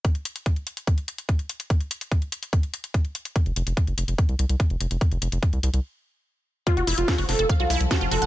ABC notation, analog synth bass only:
X:1
M:4/4
L:1/16
Q:1/4=145
K:F
V:1 name="Analog synth bass" clef=bass
z16 | z16 | z F,,, F,,, F,,, z _G,,, F,,, F,,, z C,, C,, C,, z F,,, F,,, F,,, | z F,,, F,,, F,,, z C,, C,, C,, z8 |
z F,,, F,,, F,,, z _G,,, F,,, F,,, z C,, C,, C,, z F,,, F,,, F,,, |]